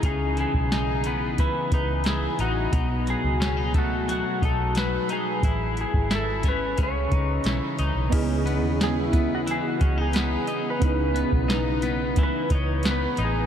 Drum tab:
CC |----------------|----------------|----------------|x---------------|
HH |x-x-x-x-x-x-x-x-|x-x-x-x-x-x-x-x-|x-x-x-x-x-x-x-x-|x-x-x-x-x-x-x-x-|
SD |----o-------o---|----o-------o---|----o-o-----o---|----o-------o---|
BD |o--o----o-o-----|o-----o---o-----|o--o--o-o-o-----|o-----o---o-----|

CC |----------------|
HH |x-x-x-x-x-x-x-x-|
SD |----o-------o---|
BD |o--o----o-o-----|